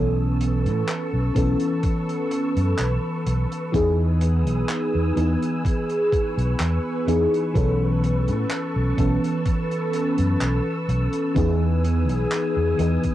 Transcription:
0.00 0.67 B1 medium
0.00 1.30 E3 medium
0.00 1.31 B3 medium
0.00 1.31 C#4 medium
0.00 1.32 A4 medium
0.00 13.15 B4 medium
0.00 3.71 A5 medium
0.00 3.71 C#6 medium
0.00 3.71 E6 medium
0.41 closed hi-hat medium
0.66 0.81 A2 loud
0.66 closed hi-hat medium
0.88 clap loud
0.88 closed hi-hat medium
1.13 1.29 B1 medium
1.34 1.53 B1 medium
1.34 3.68 E3 medium
1.34 3.69 B3 medium
1.34 3.69 C#4 medium
1.34 3.70 A4 medium
1.34 kick loud
1.34 closed hi-hat medium
1.60 closed hi-hat medium
1.83 kick loud
1.83 closed hi-hat medium
2.09 closed hi-hat medium
2.31 closed hi-hat medium
2.57 2.72 F#2 medium
2.57 closed hi-hat medium
2.78 2.96 B1 medium
2.78 clap loud
2.78 closed hi-hat medium
3.26 3.44 B1 medium
3.26 closed hi-hat medium
3.52 closed hi-hat medium
3.72 4.47 E2 medium
3.72 5.11 E3 medium
3.72 5.11 B3 medium
3.72 5.12 D#4 medium
3.72 5.12 G#4 loud
3.72 7.51 G#5 medium
3.72 5.63 D#6 medium
3.72 7.51 E6 medium
3.72 kick loud
3.72 closed hi-hat medium
4.21 closed hi-hat loud
4.47 4.62 B1 loud
4.47 closed hi-hat medium
4.69 clap loud
4.69 closed hi-hat medium
4.95 5.10 E2 medium
5.15 5.34 E2 loud
5.15 7.01 E3 medium
5.15 7.02 B3 medium
5.15 7.02 D#4 medium
5.15 7.03 G#4 medium
5.15 closed hi-hat medium
5.42 closed hi-hat medium
5.65 11.32 C#6 medium
5.65 kick loud
5.65 closed hi-hat medium
5.89 closed hi-hat soft
6.12 kick loud
6.12 closed hi-hat medium
6.37 6.53 B1 medium
6.37 closed hi-hat medium
6.60 6.77 E2 medium
6.60 clap loud
6.60 closed hi-hat medium
7.07 7.25 E2 medium
7.07 7.37 E3 medium
7.07 7.37 B3 medium
7.07 7.38 D#4 medium
7.07 7.38 G#4 medium
7.07 closed hi-hat medium
7.34 closed hi-hat medium
7.54 8.30 B1 medium
7.54 8.92 E3 medium
7.54 8.92 B3 medium
7.54 8.93 C#4 medium
7.54 8.94 A4 medium
7.54 11.33 A5 medium
7.54 13.15 E6 medium
7.54 kick loud
7.54 closed hi-hat medium
8.04 closed hi-hat medium
8.28 8.44 A2 loud
8.28 closed hi-hat medium
8.51 clap loud
8.51 closed hi-hat medium
8.76 8.91 B1 medium
8.97 9.15 B1 loud
8.97 11.30 E3 medium
8.97 11.31 B3 medium
8.97 11.31 C#4 medium
8.97 11.32 A4 medium
8.97 kick loud
8.97 closed hi-hat medium
9.24 closed hi-hat medium
9.46 kick loud
9.46 closed hi-hat medium
9.71 closed hi-hat medium
9.93 closed hi-hat medium
10.18 10.34 F#2 medium
10.18 closed hi-hat medium
10.41 10.58 B1 medium
10.41 clap loud
10.41 closed hi-hat medium
10.89 11.06 B1 medium
10.89 closed hi-hat medium
11.13 closed hi-hat medium
11.34 12.09 E2 medium
11.34 12.73 E3 medium
11.34 12.73 B3 medium
11.34 12.74 D#4 medium
11.34 12.74 G#4 loud
11.34 13.15 G#5 medium
11.34 13.15 D#6 medium
11.34 kick loud
11.34 closed hi-hat medium
11.84 closed hi-hat medium
12.09 12.24 B1 loud
12.09 closed hi-hat medium
12.32 clap loud
12.32 closed hi-hat medium
12.57 12.72 E2 medium
12.78 12.96 E2 loud
12.78 13.15 E3 medium
12.78 13.15 B3 medium
12.78 13.15 D#4 medium
12.78 13.15 G#4 medium
12.78 closed hi-hat medium
13.03 kick medium
13.03 closed hi-hat medium

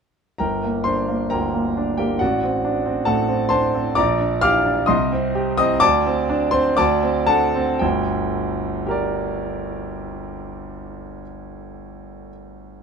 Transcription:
0.38 1.28 G1 medium
0.38 0.82 A#4 soft
0.38 0.82 G5 medium
0.38 0.84 A#5 medium
0.64 0.99 A#3 soft
0.84 1.22 D4 soft
0.84 1.27 C5 medium
0.84 1.30 C6 medium
1.08 1.44 A#3 soft
1.30 1.67 D2 soft
1.30 1.95 A#4 soft
1.30 1.94 G5 soft
1.30 1.98 A#5 medium
1.54 1.90 A#3 soft
1.77 2.12 D4 soft
1.97 2.21 A#3 soft
1.97 2.19 G4 medium
1.97 2.20 G5 medium
2.19 3.05 A1 medium
2.19 3.03 F#4 medium
2.19 3.03 D5 medium
2.19 3.05 F#5 medium
2.44 2.77 C4 soft
2.64 2.99 D4 medium
2.86 3.20 C4 soft
3.05 3.42 A2 soft
3.05 3.48 A4 medium
3.05 3.48 F#5 medium
3.05 3.48 A5 medium
3.28 3.65 C4 soft
3.49 3.87 D4 medium
3.49 3.93 C5 medium
3.49 3.93 A5 medium
3.49 3.95 C6 medium
3.75 3.97 C4 medium
3.95 4.86 A#1 medium
3.95 4.39 D5 medium
3.95 4.39 A#5 medium
3.95 4.41 D6 medium
4.20 4.56 D4 medium
4.41 4.80 G4 medium
4.41 4.85 F5 medium
4.41 4.85 D6 medium
4.41 4.88 F6 loud
4.65 4.88 D4 medium
4.86 5.78 C2 medium
4.86 5.53 D#5 medium
4.86 5.53 C6 medium
4.86 5.56 D#6 medium
5.12 5.49 C4 medium
5.35 5.72 G4 medium
5.58 5.82 C4 medium
5.58 5.80 D#5 medium
5.58 5.81 D#6 loud
5.80 6.74 D2 medium
5.80 6.48 D5 medium
5.80 6.48 A5 medium
5.80 6.51 D6 loud
6.06 6.43 C4 medium
6.29 6.67 D4 medium
6.51 6.77 C4 medium
6.51 6.75 C5 medium
6.51 6.76 C6 medium
6.77 7.80 D2 medium
6.77 7.25 D5 medium
6.77 7.25 A5 medium
6.77 7.28 D6 loud
7.03 7.45 C4 medium
7.27 7.71 D4 medium
7.27 7.78 A4 medium
7.27 7.78 F#5 medium
7.27 7.81 A5 loud
7.55 7.82 C4 medium
7.79 11.22 G1 medium
7.79 11.22 D2 medium
7.79 11.20 G5 medium
8.86 12.27 G4 medium
8.86 12.29 A#4 medium
8.91 12.31 D5 medium

